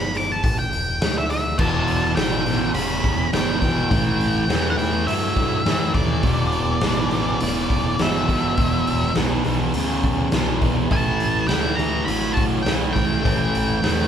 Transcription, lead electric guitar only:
0.00 0.14 B5 loud
0.17 0.30 D6 medium
0.32 0.58 A5 loud
0.59 1.14 G5 medium
1.18 1.29 E5 medium
1.31 1.58 E5 loud
1.58 2.15 A5 loud
2.16 2.70 G5 medium
2.75 3.29 B5 loud
3.34 3.59 G5 loud
3.60 4.66 G5 medium
4.70 4.77 F#5 medium
4.78 5.05 G5 medium
5.07 5.94 E5 medium
5.95 7.42 D5 medium
7.44 8.02 D5 medium
8.02 9.14 E5 medium
10.92 11.46 A5 medium
11.48 11.76 G5 medium
11.76 12.04 A#5 medium
12.05 12.33 B5 loud
12.34 12.42 A5 medium
12.63 12.71 G5 medium
12.93 14.08 G5 medium

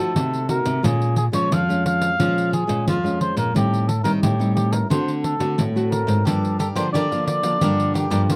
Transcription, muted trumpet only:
0.00 0.49 A4 medium
0.50 0.87 A#4 medium
0.85 1.17 G#4 medium
1.18 1.25 G#4 medium
1.34 1.55 C#5 loud
1.53 1.85 F5 loud
1.86 2.50 F5 loud
2.53 2.85 G#4 medium
2.88 3.19 F4 medium
3.21 3.37 C5 loud
3.38 3.54 A#4 medium
3.56 3.90 G4 loud
3.88 4.03 A4 medium
4.04 4.12 A#4 medium
4.22 4.54 G4 medium
4.55 4.74 G4 medium
4.73 4.90 A#4 medium
4.90 5.12 C5 medium
5.24 5.62 A4 medium
5.91 6.28 A#4 medium
6.26 6.59 A4 medium
6.60 6.68 A4 medium
6.76 6.92 C5 medium
6.93 7.25 D5 loud
7.27 7.92 D5 loud
7.95 8.33 G4 medium
8.31 8.36 F4 medium

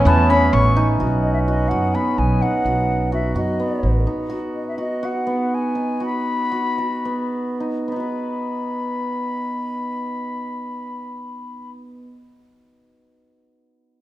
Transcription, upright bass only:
0.05 0.49 E2 loud
0.53 0.96 A1 loud
1.01 1.67 B1 medium
1.72 1.93 F#2 medium
2.18 2.40 B1 medium
2.65 3.32 B1 medium
3.35 3.57 F#2 medium
3.83 4.05 A1 medium

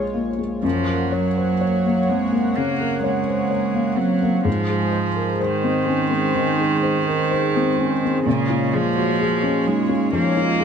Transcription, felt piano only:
0.00 0.60 A#1 soft
0.00 0.29 G#3 soft
0.00 0.67 F4 soft
0.00 0.67 C5 soft
0.00 0.67 C#5 soft
0.14 0.39 A#3 soft
0.39 0.64 G#3 soft
0.63 2.52 F#2 soft
0.87 1.26 A#4 soft
1.12 1.51 C#5 soft
1.37 1.61 C5 soft
1.61 1.99 C#5 soft
1.86 2.24 A#3 soft
2.09 2.33 C4 soft
2.32 2.70 A#3 soft
2.57 2.95 C#3 soft
2.81 3.19 A#4 soft
3.04 3.42 C#5 soft
3.28 3.52 C5 soft
3.50 3.89 C#5 soft
3.75 4.13 A#3 soft
3.97 4.21 C4 soft
4.22 4.46 A#3 soft
4.45 6.31 G#2 medium
4.69 5.08 G#4 soft
4.92 5.31 C5 soft
5.16 5.40 A#4 soft
5.41 5.79 C5 soft
5.63 6.02 C4 soft
5.86 6.11 C#4 soft
6.10 6.49 C4 soft
6.34 6.73 D#3 soft
6.58 6.97 G#4 soft
6.83 7.21 C5 soft
7.08 7.31 A#4 soft
7.31 7.69 C5 soft
7.56 7.93 C4 soft
7.79 8.02 C#4 soft
8.04 8.27 C4 soft
8.26 10.11 A#2 medium
8.50 8.87 F4 soft
8.74 9.11 G#4 soft
8.96 9.20 F#4 soft
9.21 9.58 G#4 medium
9.43 9.81 C#4 soft
9.66 9.90 D#4 soft
9.89 10.27 C#4 soft
10.13 10.51 F3 soft
10.37 10.64 F4 soft
10.60 10.64 G#4 medium

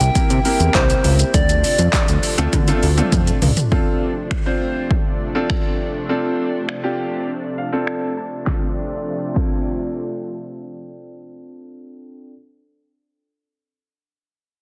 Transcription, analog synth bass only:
0.01 0.10 C2 loud
0.15 0.21 C3 medium
0.30 0.40 C3 loud
0.60 0.70 E2 medium
0.75 0.94 C2 loud
1.05 1.24 C#2 medium
1.34 1.63 D2 loud
1.79 1.89 F2 medium
2.09 2.18 D2 medium
2.38 2.48 D2 medium
2.53 2.72 D3 loud
2.83 3.02 D2 loud
3.12 3.32 F2 medium
3.42 3.52 C#2 loud

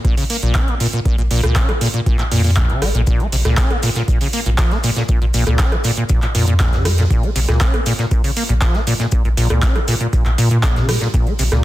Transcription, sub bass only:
0.43 0.53 A#1 loud
1.18 1.28 A#1 medium
1.31 1.41 A#1 medium
1.43 1.54 C#2 medium
2.06 2.17 A#1 medium
2.31 2.66 F2 medium
2.82 2.92 G#1 loud
2.95 3.05 A#1 medium
3.07 3.18 A#1 loud
3.32 3.43 A#1 medium
3.45 3.55 C#2 medium
4.46 4.56 A#1 loud
5.22 5.32 A#1 medium
5.34 5.45 A#1 medium
5.47 5.57 C#2 medium
6.10 6.20 A#1 medium
6.35 6.69 F2 medium
6.73 7.07 F2 medium
7.10 7.21 A#1 loud
7.36 7.46 A#1 medium
7.48 7.59 C#2 medium
8.49 8.60 A#1 loud
9.25 9.35 A#1 medium
9.37 9.48 A#1 medium
9.50 9.60 C#2 medium
10.26 10.36 A#1 loud
10.38 10.98 A#2 medium
11.14 11.24 A#1 loud
11.39 11.50 A#1 medium
11.52 11.62 C#2 medium

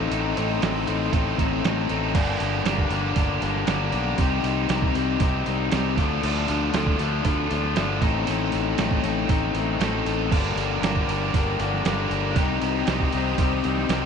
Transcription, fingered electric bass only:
0.11 0.34 A1 medium
0.38 0.60 A1 medium
0.63 0.86 A1 medium
0.88 1.11 A1 medium
1.13 1.36 A1 medium
1.38 1.61 A1 medium
1.65 1.87 A1 medium
1.90 2.13 A1 medium
2.15 2.38 G1 loud
2.40 2.63 G1 medium
2.65 2.89 G1 medium
2.90 3.14 G1 medium
3.16 3.40 G1 medium
3.42 3.65 G1 medium
3.67 3.91 G1 loud
3.93 4.16 B1 medium
4.18 4.42 C2 loud
4.44 4.67 C2 medium
4.70 4.93 C2 medium
4.95 5.18 C2 medium
5.20 5.44 C2 loud
5.47 5.70 C2 medium
5.73 5.96 C2 loud
5.97 6.21 D2 medium
6.23 6.46 D2 loud
6.50 6.72 D2 medium
6.74 6.97 D2 medium
6.99 7.23 D2 medium
7.25 7.48 D2 loud
7.51 7.74 D2 medium
7.77 8.00 G1 loud
8.02 8.25 A1 medium
8.28 8.51 A1 loud
8.54 8.77 A1 medium
8.78 9.02 A1 medium
9.03 9.27 A1 medium
9.29 9.53 A1 loud
9.55 9.78 A1 medium
9.80 10.04 A1 loud
10.05 10.29 A1 medium
10.32 10.55 G1 medium
10.56 10.80 G1 medium
10.82 11.06 G1 medium
11.08 11.31 G1 medium
11.34 11.57 G1 medium
11.60 11.83 G1 medium
11.85 12.09 G1 loud
12.10 12.34 G1 loud
12.36 12.59 C2 loud
12.62 12.85 C2 medium
12.88 13.11 C2 medium
13.13 13.36 C2 medium
13.38 13.61 C2 medium
13.65 13.88 C2 medium
13.89 14.05 C2 loud

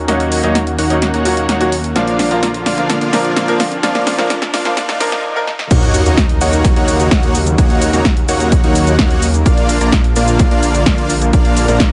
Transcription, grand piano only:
0.08 0.40 F#3 medium
0.08 0.41 A#3 medium
0.08 0.41 C#4 medium
0.08 0.41 D#4 medium
0.43 0.51 F#3 medium
0.43 0.51 A#3 medium
0.43 0.51 C#4 medium
0.43 0.52 D#4 loud
0.90 0.98 F#3 medium
0.90 0.98 A#3 medium
0.90 0.98 C#4 medium
0.90 0.98 D#4 medium
1.25 1.58 F#3 medium
1.25 1.58 A#3 medium
1.25 1.58 C#4 medium
1.25 1.58 F#4 loud
1.60 1.68 F#3 loud
1.60 1.68 A#3 medium
1.60 1.68 C#4 medium
1.60 1.69 F#4 loud
1.95 2.28 F3 medium
1.95 2.28 A#3 medium
1.95 2.28 D4 medium
1.95 2.29 F4 loud
2.30 2.38 F3 medium
2.30 2.39 A#3 medium
2.30 2.39 D4 medium
2.30 2.39 F4 loud
2.77 2.85 F3 medium
2.77 2.85 A#3 medium
2.77 2.86 D4 medium
2.77 2.86 F4 medium
3.12 3.45 F3 medium
3.12 3.45 A#3 medium
3.12 3.45 D4 medium
3.12 3.46 A#4 loud
3.48 3.56 F3 loud
3.48 3.56 A#3 medium
3.48 3.56 D4 medium
3.48 3.56 A#4 loud
3.83 4.15 F3 medium
3.83 4.16 A#3 medium
3.83 4.16 D4 medium
3.83 4.16 F4 loud
4.18 4.26 F3 medium
4.18 4.26 A#3 medium
4.18 4.26 D4 medium
4.18 4.26 F4 loud
4.65 4.73 F3 medium
4.65 4.73 A#3 medium
4.65 4.73 D4 medium
4.65 4.73 F4 medium
5.00 5.33 F3 medium
5.00 5.33 A#3 medium
5.00 5.33 D4 medium
5.00 5.33 A#4 loud
5.35 5.43 F3 loud
5.35 5.43 A#3 medium
5.35 5.44 D4 medium
5.35 5.44 A#4 loud

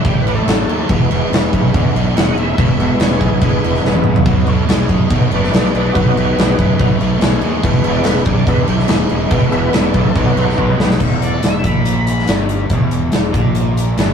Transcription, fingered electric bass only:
0.05 0.21 A1 loud
0.23 0.41 A1 medium
0.46 0.63 A1 medium
0.67 0.84 D#2 medium
0.90 1.06 E1 loud
1.11 1.27 E1 medium
1.31 1.48 E1 medium
1.52 1.69 B1 medium
1.74 1.90 E2 medium
1.94 2.11 B1 medium
2.15 2.31 E1 loud
2.35 2.52 E1 medium
2.58 2.74 E1 loud
2.77 2.94 E1 medium
2.99 3.16 E1 medium
3.21 3.37 B1 medium
3.42 3.58 E1 medium
3.63 3.79 E1 medium
3.85 4.01 E1 medium
4.05 4.21 E1 medium
4.26 4.42 B1 medium
4.47 4.64 B1 medium
4.68 4.85 B1 medium
4.89 5.06 F#2 medium
5.10 5.27 B2 loud
5.30 5.47 F#1 medium
5.52 5.68 B1 medium
5.73 5.90 B1 medium
5.96 6.12 B1 loud
6.16 6.32 B1 medium
6.37 6.54 B1 medium
6.58 6.74 F#2 medium
6.80 6.96 B1 loud
7.00 7.17 B1 medium
7.21 7.38 B1 medium
7.42 7.58 D#2 medium
7.64 7.80 E1 loud
7.84 8.00 E1 medium
8.04 8.21 E1 medium
8.26 8.43 B1 medium
8.47 8.64 E2 loud
8.68 8.85 B1 medium
8.88 9.05 E1 medium
9.11 9.27 E1 medium
9.31 9.48 E1 loud
9.51 9.68 E1 medium
9.74 9.90 E1 medium
9.94 10.11 B1 medium
10.16 10.32 B1 loud
10.36 10.53 B1 medium
10.58 10.75 B1 loud
10.78 10.95 B1 medium
11.01 11.40 E1 medium
11.43 11.63 E1 medium
11.64 12.24 A#1 medium
12.27 12.67 G1 medium
12.70 13.10 E1 medium
13.14 13.33 E1 medium
13.33 13.94 A#1 medium
13.97 14.14 G1 medium

